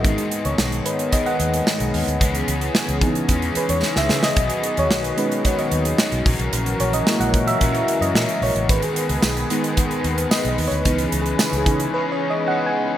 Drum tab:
HH |xxxx-xxxxxxx-xox|xxxx-xxxxxxx----|xxxx-xxxxxxx-xox|xxxx-xxxxxxx-xox|
TB |----------------|----------------|----------------|----------------|
SD |----o-------o---|----o-------oooo|----o-------o---|----o-------o---|
BD |o-------o-------|o-----o-o-------|o-------o-----o-|------o-o-------|

HH |xxxx-xxxxxxx-xox|xxxx-xxx--------|
TB |----x-------x---|----x-----------|
SD |----o-------o---|----o-----------|
BD |o-------o-------|o-----o---------|